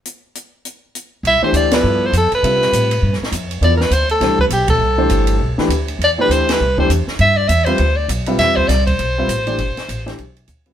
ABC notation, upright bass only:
X:1
M:4/4
L:1/8
Q:"Swing" 1/4=201
K:C
V:1 name="Upright bass" clef=bass
z8 | C,, z D,,2 G,,2 F,, z | C,2 A,,2 G,, z F,,2 | E,,2 D,,2 C,,2 B,,,2 |
C,,2 G,,,2 B,,, z D,,2 | E,,2 D,,2 C,,2 E,, z | G,,2 E,,2 D,,2 B,,,2 | E,,2 C,,2 B,,,2 A,,,2 |
G,,, z A,,,2 B,,,2 D,,2 |]